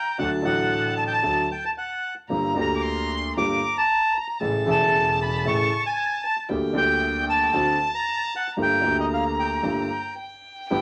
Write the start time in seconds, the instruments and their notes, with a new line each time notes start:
Already playing: bandoneon G5, violin A#5
0.18 grand piano D2 D3 F#3 A3 F#4, double bass D2, bandoneon F#5, violin A5
0.42 grand piano A1 A2 D3 F#3 A3 F#4, double bass A1, bandoneon F#5
0.97 bandoneon A5
1.07 bandoneon G5
1.13 bandoneon A5
1.23 grand piano D2 D3 F#3 A3 F#4, double bass D2
1.52 bandoneon G5
1.65 bandoneon A5
1.78 bandoneon F#5
2.29 double bass G1, grand piano G1 G2 D3 G3 A#3 G4, violin A#5
2.54 double bass D2, grand piano D2 D3 G3 A#3
2.58 grand piano G4, bandoneon A#5
2.76 violin D6
2.82 violin C6
3.14 bandoneon C6
3.36 double bass G1, grand piano G1 G2 D3 G3 A#3 G4, violin A#5, bandoneon D6
3.78 bandoneon A5
4.15 bandoneon A#5
4.40 double bass A1, grand piano A1 A2 C#3 E3 A3 E4, violin A5
4.65 grand piano E1 E2 C#3 E3 A3, double bass E1
4.69 grand piano E4, bandoneon A5
5.22 bandoneon B5
5.45 grand piano A1 A2 C#3 E3 A3 E4, double bass A1, bandoneon C#6
5.86 bandoneon G#5
6.25 bandoneon A5
6.48 grand piano D2 D3 G3 A#3 G4, double bass D2, violin G5
6.73 grand piano D2 D3 G3 A#3 G4, double bass D2
6.77 bandoneon G5
7.29 bandoneon A5
7.52 grand piano D2 D3 A3 C4 F#4, double bass D2, violin A5
7.95 bandoneon A#5
8.36 bandoneon F#5
8.57 grand piano G1 G2 D3 A3 A#3 G4, double bass G1, violin A#5
8.63 bandoneon G5
8.81 grand piano D2 D3 A3 A#3 G4, double bass D2
9.00 bandoneon D#5
9.13 bandoneon F5
9.39 bandoneon G5
9.63 grand piano G1 G2 D3 A3 A#3 G4, double bass G1
10.16 violin G5
10.70 grand piano G1 G2 D3 A3 B3 G4, double bass G1, violin G5